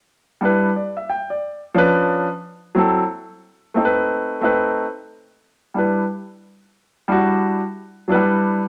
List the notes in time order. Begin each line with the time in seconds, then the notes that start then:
0.41 G3 D4 E4 B4
0.76 D5
0.97 E5
1.10 G5
1.30 D5
1.74 F3 C#4 D4 B4
2.75 F#3 C4 E4 A4
3.74 A3 C4 D#4
3.78 A4
3.85 B4
4.41 A3 C4 D#4 B4
5.74 G3 D4 E4
5.78 B4
7.08 G3 D4 E4 F#4
8.08 F#3 D4 E4 B4
8.14 G3